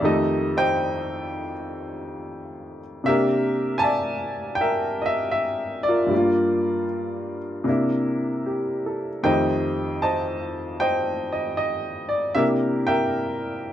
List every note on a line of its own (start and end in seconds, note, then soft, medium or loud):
0.01 3.06 F2 medium
0.01 3.07 D#3 soft
0.01 3.08 A3 medium
0.01 1.53 G4 medium
0.01 1.53 A4 medium
0.05 0.55 D#5 medium
0.57 2.80 C5 medium
0.57 2.79 D#5 medium
0.57 2.80 G5 loud
3.04 6.10 C3 soft
3.04 6.10 A#3 soft
3.04 6.11 D4 soft
3.04 4.55 G4 medium
3.04 4.55 A#4 medium
3.04 3.74 E5 medium
3.78 3.83 G#5 medium
3.78 4.53 A5 medium
3.83 5.32 D5 medium
3.83 4.60 E5 medium
4.55 4.65 G5 medium
4.61 5.87 A#4 medium
4.61 5.04 E5 medium
5.02 5.11 D#5 medium
5.06 5.30 E5 medium
5.32 5.43 E5 medium
5.83 6.83 D5 medium
5.89 6.16 F4 soft
5.89 7.38 A#4 soft
6.07 7.64 G2 soft
6.07 7.65 G3 soft
6.14 7.64 A#3 soft
6.14 7.69 F4 medium
7.64 9.23 C3 medium
7.64 9.24 A#3 soft
7.64 9.25 D4 soft
7.69 9.26 E4 medium
8.46 9.08 G4 soft
8.86 9.41 A4 soft
9.23 12.36 F2 medium
9.23 12.37 D#3 soft
9.23 12.37 A3 soft
9.23 12.34 G4 soft
9.23 10.02 C5 medium
9.23 10.01 D#5 medium
9.23 9.99 G5 medium
10.02 10.79 C5 medium
10.02 10.80 D#5 medium
10.02 10.83 A5 medium
10.80 12.32 C5 medium
10.80 11.31 D#5 medium
10.80 10.92 G5 medium
11.32 11.56 D#5 medium
11.57 11.69 D#5 medium
12.09 12.34 D5 medium
12.35 13.73 C3 soft
12.35 13.73 A#3 soft
12.35 13.73 D4 soft
12.35 13.73 E4 medium
12.35 13.73 G4 medium
12.35 12.86 A#4 medium
12.35 12.47 E5 medium
12.87 13.73 A#4 medium
12.87 13.73 E5 medium
12.87 13.73 G5 medium